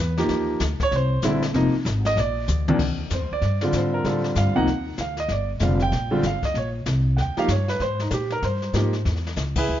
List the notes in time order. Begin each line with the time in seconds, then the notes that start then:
Already playing: E2 B4
0.17 F3 A#3 D#4 G4, snare
0.29 D#2, brush sweep, kick, snare
0.60 D2, kick, snare, hi-hat pedal
0.80 C#5, muted upright bass stroke, kick, snare
0.91 C2, brush sweep, kick, snare
0.96 C5
1.22 A#1 D3 G3 C4 E4, kick, snare, hi-hat pedal
1.42 snare
1.54 F1 C3 F3 A#3 D#4, brush sweep, kick, snare
1.85 G#1, kick, snare, hi-hat pedal
2.05 D#5, snare
2.16 A#1 D5, brush sweep, kick, snare
2.48 D2, hi-hat pedal, mid tom
2.68 D#2 C3 F3 A#3 D4, mid tom
2.79 D#2, brush sweep, kick, snare, crash
3.10 F2 C5, kick, snare, hi-hat pedal
3.21 D#2
3.31 D2 D5
3.42 G2, brush sweep, kick, snare
3.61 D3 G3 C4 F4, snare
3.72 G#2 C5, kick, snare, hi-hat pedal
3.94 A#4
4.04 A2 D3 G3 C4 F4 A4, brush sweep, kick, snare
4.24 snare
4.35 G2 F5, kick, snare, hi-hat pedal
4.46 D#2
4.55 C2 C3 F3 A#3 D#4 F#5
4.67 D#2, brush sweep, kick, snare
4.98 D2 F5, kick, snare, hi-hat pedal
5.17 D#5, snare
5.28 G1 D5, brush sweep, kick, snare
5.60 F1 D3 G3 C4 F4 F5, kick, snare, hi-hat pedal
5.79 G5, snare
5.92 A#1, brush sweep, kick, snare
6.11 D3 G3 C4 F4
6.23 G1 F5, kick, snare, hi-hat pedal
6.43 D#5, muted upright bass stroke, kick, snare
6.54 A#1 C#5, brush sweep, kick, snare
6.86 C2, kick, snare, hi-hat pedal
7.17 D#2 F#5, brush sweep, kick, snare
7.21 G5
7.37 F3 A#3 D#4 G4 F5, muted upright bass stroke, snare
7.48 G2 C#5, kick, snare, hi-hat pedal
7.68 B4, snare
7.80 G#2 C5, brush sweep, kick, snare
7.99 D#4, snare
8.10 A#2 G4, kick, snare, hi-hat pedal
8.30 A#4, snare
8.43 G2 C5, brush sweep, kick, snare
8.62 snare
8.73 G#2 F3 A#3 D#4 G4, kick, snare, hi-hat pedal
8.93 snare
9.05 E2, brush sweep, kick, snare
9.16 snare
9.27 snare
9.36 C#2, kick, snare, hi-hat pedal
9.55 E4 G#4 B4 E5, kick, crash
9.68 D2, brush sweep